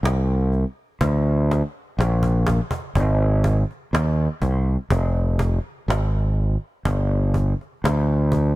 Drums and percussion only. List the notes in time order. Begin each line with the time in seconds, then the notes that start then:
0.05 cajon slap
0.52 cajon slap
1.01 cajon bass, cajon slap
1.51 cajon slap
1.98 cajon slap
2.00 cajon slap
2.23 cajon bass
2.47 cajon bass
2.71 cajon bass
2.95 cajon bass
3.44 cajon bass
3.71 cajon slap
3.95 cajon slap
4.42 cajon bass
4.90 cajon bass
5.39 cajon bass, cajon slap
5.90 cajon slap
6.85 cajon bass
7.34 cajon bass
7.61 cajon slap
7.85 cajon slap
8.32 cajon bass